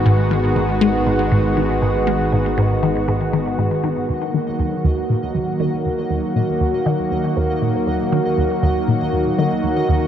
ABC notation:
X:1
M:4/4
L:1/8
Q:1/4=119
K:D#phr
V:1 name="Synth texture"
z8 | z8 | d8- | d8- |
d8 |]
V:2 name="Analog synth pad"
[D,G,B,F]8- | [D,G,B,F]8 | [D,F,A,F]8- | [D,F,A,F]8- |
[D,F,A,F]8 |]
V:3 name="Synth arpeggio sound" clef=bass
G,, D, G,, G, G,, G,, D, G,, | G, G,, G,, D, G,, D, G,, D, | D,, D, D,, D,, A,, D,, D, D,, | D,, A,, D,, D, D,, D,, A,, D,, |
D, D,, D,, A,, D,, D, D,, D,, |]
V:4 name="Analog synth bass" clef=bass
G,,,8- | G,,,8 | z8 | z8 |
z8 |]